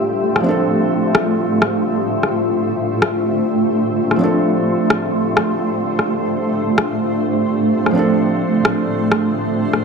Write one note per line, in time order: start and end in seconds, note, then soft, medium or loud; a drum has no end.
0.00 0.39 F3 medium
0.00 9.85 A3 medium
0.00 0.42 C4 medium
0.00 0.43 D4 medium
0.00 9.85 D4 medium
0.00 9.85 F4 medium
0.00 9.85 G4 medium
0.00 0.44 A4 medium
0.00 9.85 C5 medium
0.00 9.85 E5 medium
0.36 cross-stick soft
0.40 4.15 F3 medium
0.40 4.17 C4 medium
0.46 4.18 D4 medium
0.46 4.20 A4 medium
1.15 cross-stick medium
1.62 cross-stick soft
2.23 cross-stick soft
3.02 cross-stick medium
4.11 cross-stick soft
4.16 7.89 F3 medium
4.16 7.92 C4 medium
4.21 7.93 D4 medium
4.21 7.95 A4 medium
4.90 cross-stick medium
5.37 cross-stick soft
5.99 cross-stick soft
6.78 cross-stick medium
7.86 cross-stick soft
7.91 9.85 F3 medium
7.91 9.85 C4 medium
7.96 9.85 D4 medium
7.96 9.85 A4 medium
8.65 cross-stick medium
9.12 cross-stick soft
9.73 cross-stick soft